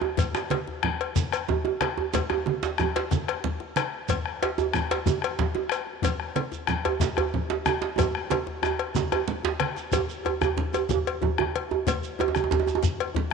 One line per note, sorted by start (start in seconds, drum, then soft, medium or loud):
0.01 djembe slap soft
0.01 djembe tone medium
0.17 bombo low loud
0.17 cowbell medium
0.17 djembe slap medium
0.17 djembe bass medium
0.17 low conga medium
0.17 shekere medium
0.35 bombo rim medium
0.35 djembe slap medium
0.35 high conga soft
0.35 shekere soft
0.50 cowbell soft
0.50 djembe slap soft
0.50 djembe slap medium
0.50 high conga medium
0.67 djembe slap medium
0.67 high conga soft
0.67 djembe tone medium
0.83 bombo rim loud
0.83 high conga soft
0.83 djembe bass medium
0.83 low conga medium
1.00 bombo rim soft
1.00 cowbell soft
1.16 bombo low loud
1.16 djembe slap medium
1.16 high conga medium
1.16 shekere medium
1.32 bombo rim medium
1.32 cowbell soft
1.32 djembe slap soft
1.32 shekere soft
1.48 bombo rim soft
1.48 djembe slap soft
1.48 high conga soft
1.48 djembe tone medium
1.48 low conga medium
1.48 djembe bass medium
1.65 djembe slap medium
1.65 djembe tone medium
1.65 high conga soft
1.81 bombo rim medium
1.81 cowbell soft
1.81 djembe slap medium
1.81 djembe slap soft
1.81 high conga medium
1.98 djembe tone medium
2.14 bombo low medium
2.14 cowbell medium
2.14 djembe slap medium
2.14 low conga medium
2.14 djembe bass medium
2.14 shekere medium
2.30 bombo rim medium
2.30 djembe tone loud
2.46 djembe tone medium
2.46 high conga medium
2.63 djembe slap medium
2.63 djembe tone soft
2.63 shekere soft
2.78 bombo rim medium
2.78 djembe tone medium
2.78 djembe bass medium
2.78 low conga medium
2.78 shekere soft
2.95 bombo rim soft
2.95 cowbell soft
2.95 djembe slap medium
3.11 bombo rim soft
3.11 bombo low medium
3.11 djembe slap medium
3.11 high conga medium
3.11 shekere medium
3.28 bombo rim medium
3.28 cowbell soft
3.44 djembe slap soft
3.44 low conga medium
3.44 djembe bass medium
3.60 djembe slap medium
3.60 djembe tone medium
3.76 bombo rim medium
3.76 cowbell medium
3.76 high conga medium
3.76 shekere soft
3.93 djembe slap soft
4.09 bombo low medium
4.09 cowbell medium
4.09 djembe slap medium
4.09 low conga medium
4.09 djembe bass medium
4.09 shekere medium
4.25 bombo rim medium
4.42 cowbell medium
4.42 djembe slap medium
4.58 djembe slap medium
4.58 djembe tone medium
4.58 shekere soft
4.74 bombo rim medium
4.74 low conga medium
4.74 djembe bass medium
4.74 shekere soft
4.90 bombo rim soft
4.90 cowbell medium
4.90 djembe slap medium
5.06 bombo rim soft
5.06 bombo low loud
5.06 djembe slap medium
5.06 djembe tone medium
5.06 high conga medium
5.06 shekere medium
5.22 bombo rim medium
5.22 cowbell medium
5.39 djembe slap medium
5.39 djembe slap soft
5.39 low conga medium
5.39 djembe bass medium
5.55 djembe slap medium
5.55 djembe tone medium
5.69 bombo rim medium
5.69 cowbell medium
5.69 shekere soft
5.87 djembe slap soft
6.02 bombo low medium
6.02 cowbell medium
6.02 djembe slap medium
6.02 djembe bass medium
6.02 low conga medium
6.02 shekere medium
6.20 bombo rim medium
6.36 cowbell soft
6.36 high conga medium
6.52 djembe slap medium
6.52 djembe tone medium
6.52 shekere soft
6.67 bombo rim loud
6.67 djembe bass medium
6.67 low conga medium
6.67 shekere soft
6.84 bombo rim soft
6.84 cowbell medium
6.84 djembe tone medium
7.00 bombo rim soft
7.00 bombo low loud
7.00 djembe slap medium
7.00 high conga medium
7.00 shekere medium
7.17 bombo rim medium
7.17 cowbell soft
7.17 djembe bass medium
7.34 djembe slap soft
7.34 djembe bass medium
7.34 low conga medium
7.50 djembe slap medium
7.50 djembe tone medium
7.66 bombo rim medium
7.66 djembe tone loud
7.66 high conga medium
7.66 shekere soft
7.82 djembe slap medium
7.98 bombo low medium
7.98 cowbell medium
7.98 djembe slap medium
7.98 djembe tone medium
7.98 low conga medium
7.98 djembe bass medium
7.98 shekere medium
8.15 bombo rim medium
8.30 cowbell medium
8.30 djembe tone medium
8.30 high conga medium
8.47 djembe slap medium
8.47 djembe tone medium
8.63 bombo rim loud
8.63 djembe slap soft
8.63 djembe tone medium
8.63 high conga soft
8.63 djembe bass medium
8.63 shekere soft
8.79 cowbell soft
8.79 djembe slap soft
8.95 bombo rim soft
8.95 bombo low loud
8.95 djembe slap medium
8.95 high conga medium
8.95 djembe tone loud
8.95 shekere medium
9.12 bombo rim medium
9.12 cowbell soft
9.12 djembe tone loud
9.27 djembe bass soft
9.27 low conga medium
9.43 djembe slap loud
9.43 djembe bass medium
9.60 bombo rim medium
9.60 cowbell medium
9.60 djembe slap medium
9.60 high conga medium
9.76 djembe slap medium
9.76 shekere soft
9.92 bombo low medium
9.92 cowbell medium
9.92 djembe slap medium
9.92 high conga soft
9.92 djembe bass medium
9.92 low conga medium
9.92 djembe bass loud
9.92 shekere medium
10.10 shekere soft
10.25 bombo rim soft
10.25 cowbell soft
10.25 djembe tone medium
10.41 bombo rim medium
10.41 djembe slap soft
10.41 high conga medium
10.41 djembe bass loud
10.41 shekere soft
10.57 djembe slap soft
10.57 high conga soft
10.57 djembe bass medium
10.57 low conga medium
10.73 bombo rim soft
10.73 cowbell soft
10.73 djembe slap soft
10.73 djembe tone medium
10.73 shekere soft
10.89 bombo low loud
10.89 djembe slap medium
10.89 djembe bass loud
10.89 shekere medium
11.07 cowbell soft
11.22 djembe tone medium
11.22 djembe bass medium
11.22 low conga medium
11.38 bombo rim medium
11.38 djembe slap medium
11.38 high conga medium
11.38 djembe bass medium
11.56 cowbell soft
11.56 high conga soft
11.71 djembe tone medium
11.87 bombo low medium
11.87 cowbell medium
11.87 djembe slap medium
11.87 high conga soft
11.87 djembe bass medium
11.87 low conga medium
11.87 shekere medium
12.03 shekere soft
12.19 bombo rim soft
12.19 cowbell soft
12.19 djembe tone medium
12.28 djembe tone medium
12.35 bombo rim medium
12.35 djembe slap medium
12.35 djembe tone medium
12.35 high conga medium
12.35 shekere soft
12.44 djembe tone medium
12.51 djembe slap soft
12.51 djembe tone medium
12.51 high conga soft
12.51 djembe bass medium
12.51 low conga medium
12.60 djembe tone medium
12.67 bombo rim soft
12.67 djembe slap soft
12.67 djembe tone medium
12.67 shekere soft
12.75 djembe tone medium
12.83 bombo low loud
12.83 djembe slap medium
12.83 shekere medium
13.00 cowbell soft
13.15 djembe tone medium
13.15 djembe bass medium
13.15 low conga medium
13.30 djembe slap medium